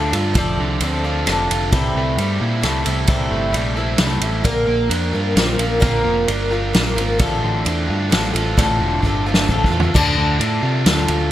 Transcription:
Already playing: D2 D3 A3 D4 F4 A4 D5
0.12 G2 F4 A4 D5, ride
0.34 F1 F3 A3 C4 A4 D5, kick, ride
0.57 C2 D3
0.80 D2 A3 C4 A4 D5, ride
1.04 C4 F4 A4 D5
1.26 F1 D3 A3 C4 A4 D5, cross-stick, ride
1.50 F1 F4, ride
1.72 C2 C3 E3 G3 C4 E4 A4, kick, ride
1.94 C2 A3
2.17 G2 G3 C4 E4 A4, ride
2.40 A#2 E4
2.62 C2 G3 A3 C4 E4 A4, cross-stick, ride
2.84 C2 G3 C4 E4 A4, ride
3.07 C2 C3 E3 G3 C4 E4 A4, kick, ride
3.30 G1 A3
3.52 A#1 G3 C4, ride
3.56 E4 A4
3.76 G3 C4 E4 A4
3.97 C2 G3 A3 C4, snare, ride
4.01 E4 A4
4.21 A1 G3 C4 E4 A4, ride
4.44 A#1 A#2 D3 A#3 C4 F4 A#4, kick, ride
4.67 A#1 A#3
4.89 F2 A#3 C4 D4 F4 A#4, ride
5.12 G2 A#3 C4 F4 A#4
5.36 A#1 A#3 C4 F4 A#4, snare, ride
5.58 A#1 A#3 C4 F4 A#4, ride
5.80 A#1 A#2 D3 A#3 C4 F4 A#4, kick, ride
6.05 F1 A#3
6.28 G1 A#3 C4 D4 F4 A#4, ride
6.50 A#3 C4 F4 A#4
6.73 A#1 A#3 C4 F4 A#4, snare, ride
6.96 G#1 C4 F4 A#4, ride
7.00 A#3
7.19 A1 A2 D3 A3 C4 F4 A4, kick, ride
7.43 A1 D3
7.65 E2 A3 C4 D4 F4 A4, ride
7.88 G2 F4
8.10 A1 D3 A3 C4 F4 A4, snare, ride
8.34 A1 A3 C4 F4 A4, ride
8.57 A1 A2 D3 A3 C4 F4 A4, kick, ride
8.80 E1 D3
9.02 G1 A3 C4 D4 F4, kick
9.06 A4
9.26 A3 C4 F4 A4
9.34 snare
9.48 A1 D3 A3 C4 F4 A4, kick
9.64 kick
9.71 E2 A3 C4 F4 A4
9.80 floor tom
9.94 D2 D3 A3 D4 F4 A4, kick, crash
10.17 D2 D3
10.38 A2 A3 D4 F4, ride
10.43 A4
10.61 C3 F4
10.84 D2 D3 A3 D4 F4, snare, ride
10.88 A4
11.08 D2 F4, ride

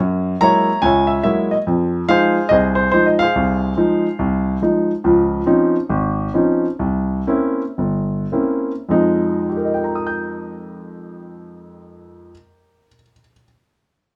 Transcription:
Already playing: F#2
0.41 F#3 G#3 A#3 E4 C#5 E5 A#5
0.82 C#2 C#5 E5 G#5
1.07 E5
1.23 F#3 G#3 A#3 E4 E5
1.51 D#5
1.67 F2
2.08 F3 G#3 D#4 G#4 C5 F5
2.49 C2 G#4 C5 D#5
2.75 C5
2.92 F3 G#3 D#4 C5
3.06 D#5
3.19 G#4 C5 F5
3.35 C2
3.77 F3 G#3 D#4
4.19 C2
4.62 F3 G#3 D#4
5.04 C#2 F3
5.46 F3 C4 C#4 D#4
5.89 G#1
6.34 F3 C4 C#4 D#4
6.79 C2
7.27 A#3 C4 C#4 E4
7.78 G1
8.32 A#3 C4 C#4 E4
8.89 F2 F3 G#3 D#4
9.50 G4
9.57 A#4
9.65 D#5
9.74 G5
9.84 A#5
9.95 D#6
10.07 G6

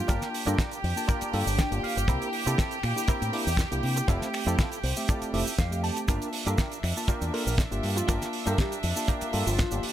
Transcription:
Already playing: F4 G4 G5
0.08 G1 A#3 D4 F4 G4 A#4 A5, kick, closed hi-hat, cabasa
0.22 snare, closed hi-hat, cabasa
0.34 open hi-hat
0.46 G2 A#3 D4 F4 G4 A4 A#4, closed hi-hat, cabasa
0.58 kick, snare, closed hi-hat, cabasa
0.71 closed hi-hat, cabasa
0.84 F2, open hi-hat
0.96 A#3 D4 F4 A5, cabasa
1.08 D4 F4 G4 A#4, kick, closed hi-hat, cabasa
1.21 muted fingered electric bass stroke, closed hi-hat, cabasa
1.33 G2 A#3 D4 F4 A4, open hi-hat
1.47 G1, cabasa
1.59 G5, kick, snare, closed hi-hat, cabasa
1.71 G1 A#3 D4 F4 G4, closed hi-hat, cabasa
1.83 F5, muted fingered electric bass stroke, open hi-hat
1.96 G1, muted clean electric guitar stroke, closed hi-hat, cabasa
2.08 C2 A#3 C4 D4 E4 G4 A#4, kick, closed hi-hat, cabasa
2.22 closed hi-hat, cabasa
2.33 open hi-hat
2.46 C3 A#3 C4 D4 E4 G4 A4, closed hi-hat, cabasa
2.58 kick, snare, closed hi-hat, cabasa
2.71 closed hi-hat, cabasa
2.83 A#2, finger snap, open hi-hat
2.96 A#3 D4 E4 G4, cabasa
3.08 C4 E4 G4 A#4, finger snap, muted fingered electric bass stroke, kick, closed hi-hat, cabasa
3.22 A2, closed hi-hat, cabasa
3.33 A#3 D4 E4 G4, open hi-hat
3.47 E2, cabasa
3.57 kick, snare, closed hi-hat, cabasa
3.71 C2 A#3 D4 E4 G4, closed hi-hat, cabasa
3.83 C3, open hi-hat
3.96 muted clean electric guitar stroke, closed hi-hat, cabasa
4.08 F1 A3 C4 E4 F4 G4 A4 E5, kick, closed hi-hat, cabasa
4.21 snare, closed hi-hat, cabasa
4.34 finger snap, open hi-hat
4.46 F2 A3 C4 E4 F4 G4 A4, closed hi-hat, cabasa
4.59 kick, snare, closed hi-hat, cabasa
4.72 closed hi-hat, cabasa
4.83 C2 C5, open hi-hat
4.96 A3 C4 G4 E5, cabasa
5.08 C4 E4 F4 A4 D5, kick, closed hi-hat, cabasa
5.22 muted fingered electric bass stroke, closed hi-hat, cabasa
5.33 F1 A3 C4 E4 G4 E5, open hi-hat
5.47 muted fingered electric bass stroke, cabasa
5.58 F2 F5, kick, snare, closed hi-hat, cabasa
5.71 A3 C4 G4, closed hi-hat, cabasa
5.84 A5, open hi-hat
5.96 muted clean electric guitar stroke, closed hi-hat, cabasa
6.08 G1 A#3 D4 F4 G4 A#4 E5 A5, kick, closed hi-hat, cabasa
6.22 closed hi-hat, cabasa
6.33 open hi-hat
6.46 G2 A#3 D4 F4 G4 A4 A#4, closed hi-hat, cabasa
6.58 kick, snare, closed hi-hat, cabasa
6.72 closed hi-hat, cabasa
6.83 F2, finger snap, open hi-hat
6.96 A#3 D4 F4 A5, cabasa
7.08 D4 F4 G4 A#4, finger snap, muted fingered electric bass stroke, kick, closed hi-hat, cabasa
7.21 E2, closed hi-hat, cabasa
7.33 A#3 D4 F4 A4 A#4, open hi-hat
7.47 A#1 A#4, cabasa
7.58 kick, snare, closed hi-hat, cabasa
7.71 G1 A#3 D4 F4 G4, closed hi-hat, cabasa
7.83 G2, open hi-hat
7.96 F4, muted clean electric guitar stroke, closed hi-hat, cabasa
8.08 G1 A#3 D4 F4 G4 A#4 A5, kick, closed hi-hat, cabasa
8.22 snare, closed hi-hat, cabasa
8.33 open hi-hat
8.46 G2 A#3 D4 F4 G4 A4 A#4, closed hi-hat, cabasa
8.58 G4, kick, snare, closed hi-hat, cabasa
8.72 closed hi-hat, cabasa
8.83 F2, open hi-hat
8.96 A#3 D4 F4 A5, cabasa
9.08 D4 F4 G4 A#4, kick, closed hi-hat, cabasa
9.21 muted fingered electric bass stroke, closed hi-hat, cabasa
9.33 G2 A#3 D4 F4 A4, open hi-hat
9.47 G1 F4, cabasa
9.59 kick, snare, closed hi-hat, cabasa
9.71 G1 A#3 D4 F4 G4, closed hi-hat, cabasa
9.83 open hi-hat

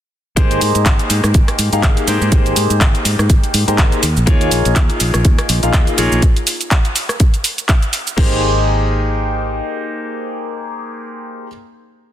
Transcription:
0.36 G#1 A#3 D#4 G4 G#4 C5, kick, closed hi-hat, cabasa
0.51 closed hi-hat, cabasa
0.61 G#2, open hi-hat, cabasa
0.75 G#2, closed hi-hat, cabasa
0.86 G#1, kick, clap, closed hi-hat, cabasa
0.99 closed hi-hat, cabasa
1.10 G#2, open hi-hat, cabasa
1.24 G#2, cross-stick, cabasa
1.34 G#1, kick, closed hi-hat, cabasa
1.48 cross-stick, closed hi-hat, cabasa
1.59 G#2, open hi-hat, cabasa
1.73 G#2 A#3 D#4 G4 G#4 F5, closed hi-hat, cabasa
1.83 G#1, kick, clap, closed hi-hat, cabasa
1.97 closed hi-hat, cabasa
2.07 G#2 A#3 D#4 G4 G#4 C5, open hi-hat, cabasa
2.21 G#2, cabasa
2.32 G#1 G4 G#4, kick, closed hi-hat, cabasa
2.46 closed hi-hat, cabasa
2.56 G#2, open hi-hat, cabasa
2.70 G#2, closed hi-hat, cabasa
2.81 G#1, kick, clap, closed hi-hat, cabasa
2.95 closed hi-hat, cabasa
3.05 G#2, open hi-hat, cabasa
3.19 G#2, cross-stick, cabasa
3.30 G#1, kick, closed hi-hat, cabasa
3.44 muted fingered electric bass stroke, closed hi-hat, cabasa
3.54 G#2, open hi-hat, cabasa
3.67 G#2 A#3 D#4 G4 G#4 C5, closed hi-hat, cabasa
3.78 G#1, kick, clap, closed hi-hat, cabasa
3.92 closed hi-hat, cabasa
4.03 D#2, open hi-hat, cabasa
4.17 A#1, cabasa
4.26 D#2 A#3 D#4 F4 G#4 C#5, kick, closed hi-hat, cabasa
4.41 closed hi-hat, cabasa
4.51 A#1, open hi-hat, cabasa
4.65 A#1, closed hi-hat, cabasa
4.76 kick, clap, closed hi-hat, cabasa
4.90 closed hi-hat, cabasa
5.00 A#1, open hi-hat, cabasa
5.14 A#1, cross-stick, cabasa
5.25 D#2, kick, closed hi-hat, cabasa
5.38 cross-stick, closed hi-hat, cabasa
5.49 A#1, open hi-hat, cabasa
5.63 A#1 A#3 D#4 F4 G#4 F5, closed hi-hat, cabasa
5.73 kick, clap, closed hi-hat, cabasa
5.87 closed hi-hat, cabasa
5.98 A#1 A#3 D#4 F4 G#4 C#5, open hi-hat, cabasa
6.12 A#1, cabasa
6.22 kick, closed hi-hat, cabasa
6.36 closed hi-hat, cabasa
6.47 open hi-hat, cabasa
6.61 closed hi-hat, cabasa
6.71 kick, clap, closed hi-hat, cabasa
6.85 closed hi-hat, cabasa
6.96 open hi-hat, cabasa
7.09 cross-stick, cabasa
7.20 kick, closed hi-hat, cabasa
7.34 closed hi-hat, cabasa
7.44 open hi-hat, cabasa
7.58 closed hi-hat, cabasa
7.69 kick, clap, closed hi-hat, cabasa
7.83 closed hi-hat, cabasa
7.93 open hi-hat, cabasa
8.07 cabasa
8.17 G#1 A#3 D#4 G4 G#4 C5, kick, crash

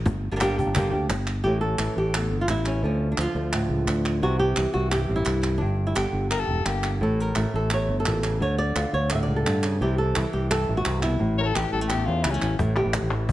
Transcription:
0.06 G1, muted nylon-string guitar stroke, cajon bass, cajon slap
0.31 G1 G3 A#3 D4 G4
0.36 G3 A#3 D4 G4
0.40 D3 G3 A#3 D4 G4, cajon slap, clap
0.58 A#3 D4 G4, cajon bass
0.66 G1
0.74 D3 G3 A#3 D4 G4, cajon bass, clap
0.91 D2 A#3 D4 G4
1.09 G1, muted nylon-string guitar stroke, cajon slap, clap
1.27 clap
1.44 A1 A2 E3 A3 C#4 G4
1.61 A4
1.79 A1 E3, clap
1.96 A1 G4
2.14 E2 A4, clap
2.31 G1
2.41 F4
2.48 A1 E4, clap
2.66 C#4, clap
2.83 D2 D3 F3 A3 C#4
3.12 D4
3.17 D2 F3 F4, clap
3.35 D2 A3
3.53 A2, clap
3.69 C#2
3.87 D2, clap
4.05 clap
4.22 C2 C3 E3 G3 C4 F#4
4.39 G4
4.56 C2 E3, clap
4.74 C2 F#4
4.91 G2 G4, clap
5.09 A1 C4
5.16 E4
5.25 C2 D4, clap
5.41 C4, clap
5.58 G1 G2 D4
5.87 E4
5.95 G1 D3 G4, clap
6.13 G1
6.30 G2 A#4, clap
6.40 A4
6.48 E1
6.65 G1 A#3 G4, clap
6.83 D4, clap
7.01 A1 A2 A4
7.20 A#4
7.35 A1 A3, clap
7.54 A1 A4
7.70 E2 C#5, clap
7.88 G1
8.00 A4
8.05 A1 A#2, clap
8.23 C#3, clap
8.40 D2 D3 C#5
8.58 D5
8.76 D2 F4, clap
8.93 D2 C#5
9.10 A2 D5, clap
9.15 E5
9.23 D5
9.28 C#2
9.36 A4
9.47 G2 D3, clap
9.63 C#3, clap
9.81 C2 C3 E3 G3 E4 G4
9.98 A4
10.16 C2 E3, clap
10.33 C2 G4
10.50 G2 A4, clap
10.69 A1 E4
10.77 F#4
10.85 C2 C3, clap
11.02 B2 E4, clap
11.19 A1 A2
11.38 A3 A#4 C#5
11.43 A4 C#5
11.55 A1 E3 G4, clap
11.72 A1 G3 A4
11.81 A3
11.88 E2 G4, clap
12.06 E2 C#4 F4
12.23 C#2 G3 E4, clap
12.31 A3 C#4
12.42 A1 C#4, clap
12.59 A1 A2 E4, cajon bass, cajon slap
12.76 E3 G4, cajon slap
12.85 A1
12.93 cajon slap, clap
13.02 A1
13.12 E3
13.29 cajon bass

